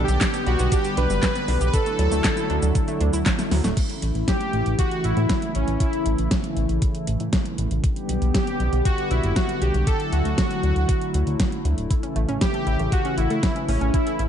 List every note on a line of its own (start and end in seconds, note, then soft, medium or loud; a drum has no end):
0.00 3.73 D3 medium
0.00 1.72 G3 medium
0.00 1.72 B3 medium
0.00 1.72 G4 medium
0.04 0.48 G4 loud
0.08 0.18 B1 medium
0.08 0.14 G4 loud
0.08 closed hi-hat soft
0.08 cabasa medium
0.21 0.27 D4 medium
0.21 kick loud
0.21 snare loud
0.21 clap loud
0.21 closed hi-hat medium
0.21 cabasa medium
0.34 0.44 B3 medium
0.34 closed hi-hat soft
0.34 cabasa soft
0.47 0.56 B1 loud
0.47 0.59 G3 loud
0.47 0.73 F#4 medium
0.47 0.73 F#4 loud
0.47 closed hi-hat soft
0.59 0.69 B1 medium
0.59 0.69 B3 loud
0.59 closed hi-hat soft
0.59 cabasa medium
0.72 0.82 D4 medium
0.72 0.98 G4 loud
0.72 kick loud
0.72 closed hi-hat medium
0.72 cabasa medium
0.85 0.95 G4 medium
0.85 closed hi-hat soft
0.85 cabasa soft
0.97 1.07 B1 loud
0.97 1.04 D4 loud
0.97 1.65 B4 loud
0.97 1.66 B4 loud
0.97 closed hi-hat medium
1.10 1.19 F#1 medium
1.10 1.22 G3 medium
1.10 closed hi-hat soft
1.10 cabasa medium
1.23 1.33 G3 medium
1.23 kick loud
1.23 snare loud
1.23 clap loud
1.23 closed hi-hat medium
1.23 cabasa medium
1.35 1.48 B3 loud
1.35 closed hi-hat soft
1.35 cabasa soft
1.48 1.58 B1 loud
1.48 1.58 D4 loud
1.48 open hi-hat medium
1.61 1.70 B1 medium
1.61 1.67 G4 loud
1.61 closed hi-hat soft
1.61 cabasa medium
1.66 1.74 B4 medium
1.74 3.75 F#3 medium
1.74 3.75 A3 medium
1.74 1.80 D4 medium
1.74 3.75 E4 medium
1.74 3.22 A4 medium
1.74 3.22 A4 loud
1.74 kick loud
1.74 closed hi-hat loud
1.74 cabasa soft
1.86 1.97 A3 medium
1.86 closed hi-hat soft
1.86 cabasa soft
1.99 2.08 D2 medium
1.99 2.11 F#3 loud
1.99 closed hi-hat medium
2.12 2.21 D2 medium
2.12 2.22 A3 loud
2.12 closed hi-hat soft
2.12 cabasa medium
2.24 2.35 D4 medium
2.24 kick loud
2.24 snare loud
2.24 clap loud
2.24 closed hi-hat loud
2.24 cabasa medium
2.37 2.47 E4 medium
2.37 closed hi-hat soft
2.37 cabasa soft
2.50 2.59 D2 loud
2.50 2.56 D4 loud
2.50 closed hi-hat soft
2.62 2.72 D2 medium
2.62 2.74 F#3 medium
2.62 closed hi-hat soft
2.62 cabasa medium
2.75 2.86 F#3 medium
2.75 kick loud
2.75 closed hi-hat loud
2.75 cabasa soft
2.88 3.00 A3 loud
2.88 closed hi-hat soft
2.88 cabasa soft
3.01 3.10 D2 loud
3.01 3.11 D4 loud
3.01 closed hi-hat medium
3.13 3.23 D2 medium
3.13 3.20 E4 loud
3.13 closed hi-hat soft
3.13 cabasa medium
3.26 3.32 D4 medium
3.26 kick loud
3.26 snare loud
3.26 clap loud
3.26 closed hi-hat medium
3.26 cabasa soft
3.39 3.49 A3 medium
3.39 snare medium
3.39 closed hi-hat soft
3.39 cabasa soft
3.51 3.61 D2 medium
3.51 3.64 F#3 loud
3.51 snare medium
3.51 open hi-hat medium
3.64 3.74 D1 medium
3.64 3.75 A3 loud
3.64 snare medium
3.64 closed hi-hat soft
3.64 cabasa medium
3.77 7.80 C#3 medium
3.77 7.80 E3 medium
3.77 7.80 A3 medium
3.77 7.80 E4 medium
3.77 kick loud
3.77 closed hi-hat medium
3.77 crash medium
3.90 closed hi-hat soft
4.02 4.12 A1 medium
4.02 closed hi-hat medium
4.15 4.24 A1 medium
4.15 closed hi-hat soft
4.28 4.80 G4 loud
4.28 kick loud
4.28 snare loud
4.28 closed hi-hat medium
4.41 closed hi-hat soft
4.53 4.63 A1 medium
4.53 closed hi-hat soft
4.66 4.75 A1 medium
4.66 closed hi-hat soft
4.79 5.05 F#4 loud
4.79 kick loud
4.79 closed hi-hat medium
4.91 closed hi-hat soft
5.04 5.13 A1 medium
5.04 5.56 E4 loud
5.04 closed hi-hat medium
5.17 5.26 A2 medium
5.17 closed hi-hat soft
5.29 kick loud
5.29 snare loud
5.29 closed hi-hat medium
5.42 closed hi-hat soft
5.55 5.64 A1 medium
5.55 5.79 C#4 medium
5.55 closed hi-hat medium
5.68 5.77 A1 medium
5.68 closed hi-hat soft
5.80 6.28 E4 medium
5.80 kick loud
5.80 closed hi-hat medium
5.93 closed hi-hat soft
6.06 6.15 A1 medium
6.06 closed hi-hat medium
6.18 6.28 A1 medium
6.18 closed hi-hat soft
6.31 kick loud
6.31 snare loud
6.31 closed hi-hat medium
6.44 closed hi-hat soft
6.57 6.66 A1 medium
6.57 closed hi-hat soft
6.69 6.79 A1 medium
6.69 closed hi-hat soft
6.82 kick loud
6.82 closed hi-hat medium
6.95 closed hi-hat soft
7.07 7.17 A1 medium
7.07 closed hi-hat medium
7.20 7.30 A2 medium
7.20 closed hi-hat soft
7.33 kick loud
7.33 snare loud
7.33 closed hi-hat medium
7.46 closed hi-hat soft
7.58 7.68 A1 medium
7.58 closed hi-hat medium
7.71 7.80 A1 medium
7.71 closed hi-hat soft
7.84 11.87 D3 medium
7.84 9.85 G3 medium
7.84 9.85 B3 medium
7.84 9.85 G4 medium
7.84 kick loud
7.84 closed hi-hat medium
7.96 closed hi-hat soft
8.09 8.19 B1 medium
8.09 closed hi-hat medium
8.22 8.31 B1 medium
8.22 closed hi-hat soft
8.35 8.82 G4 loud
8.35 kick loud
8.35 snare loud
8.35 closed hi-hat medium
8.47 closed hi-hat soft
8.60 8.69 B1 medium
8.60 closed hi-hat soft
8.73 8.82 B1 medium
8.73 closed hi-hat soft
8.85 9.12 F#4 loud
8.85 kick loud
8.85 closed hi-hat medium
8.98 closed hi-hat soft
9.11 9.20 B1 medium
9.11 9.34 E4 medium
9.11 closed hi-hat medium
9.24 9.33 F#1 medium
9.24 closed hi-hat soft
9.36 9.62 F#4 loud
9.36 kick loud
9.36 snare loud
9.36 closed hi-hat medium
9.49 closed hi-hat soft
9.62 9.71 B1 medium
9.62 9.88 G4 loud
9.62 closed hi-hat medium
9.74 9.84 B1 medium
9.74 closed hi-hat soft
9.87 11.88 F#3 medium
9.87 14.29 A3 medium
9.87 14.29 E4 medium
9.87 10.13 A4 loud
9.87 kick loud
9.87 closed hi-hat medium
10.00 closed hi-hat soft
10.13 10.22 D2 medium
10.13 11.61 F#4 loud
10.13 closed hi-hat medium
10.25 10.35 D2 medium
10.25 closed hi-hat soft
10.38 kick loud
10.38 snare loud
10.38 closed hi-hat medium
10.51 closed hi-hat soft
10.63 10.73 D2 medium
10.63 closed hi-hat soft
10.76 10.85 D2 medium
10.76 closed hi-hat soft
10.89 kick loud
10.89 closed hi-hat medium
11.02 closed hi-hat soft
11.14 11.24 D2 medium
11.14 closed hi-hat medium
11.27 11.36 D2 medium
11.27 closed hi-hat soft
11.40 kick loud
11.40 snare loud
11.40 closed hi-hat medium
11.52 closed hi-hat soft
11.65 11.74 D2 medium
11.65 closed hi-hat medium
11.78 11.87 D1 medium
11.78 closed hi-hat soft
11.91 14.29 C#3 medium
11.91 14.29 E3 medium
11.91 11.97 E4 medium
11.91 kick loud
11.91 closed hi-hat medium
12.03 12.13 C#4 medium
12.03 closed hi-hat soft
12.16 12.25 A1 medium
12.16 12.28 A3 loud
12.16 closed hi-hat medium
12.29 12.38 A1 medium
12.29 12.39 C#4 loud
12.29 closed hi-hat soft
12.41 12.52 E4 medium
12.41 12.94 G4 loud
12.41 kick loud
12.41 snare loud
12.41 closed hi-hat medium
12.54 12.64 A4 medium
12.54 closed hi-hat soft
12.67 12.76 A1 medium
12.67 12.73 E4 loud
12.67 closed hi-hat soft
12.79 12.89 A1 medium
12.79 12.91 A3 medium
12.79 closed hi-hat soft
12.92 13.03 A3 medium
12.92 13.16 F#4 loud
12.92 kick loud
12.92 closed hi-hat medium
13.05 13.17 C#4 loud
13.05 closed hi-hat soft
13.18 13.27 A1 medium
13.18 13.70 E4 loud
13.18 13.28 E4 loud
13.18 closed hi-hat medium
13.30 13.40 A2 medium
13.30 13.37 A4 loud
13.30 closed hi-hat soft
13.43 13.49 E4 medium
13.43 kick loud
13.43 snare loud
13.43 closed hi-hat medium
13.56 13.66 C#4 medium
13.56 closed hi-hat soft
13.68 13.78 A1 medium
13.68 13.81 A3 loud
13.68 13.95 C#4 medium
13.68 open hi-hat medium
13.81 13.90 A1 medium
13.81 13.91 C#4 loud
13.81 closed hi-hat soft
13.94 14.29 E4 medium
13.94 14.04 E4 medium
13.94 kick loud
13.94 closed hi-hat medium
14.07 14.17 A4 medium
14.07 closed hi-hat soft
14.19 14.29 A1 medium
14.19 14.25 E4 loud
14.19 closed hi-hat medium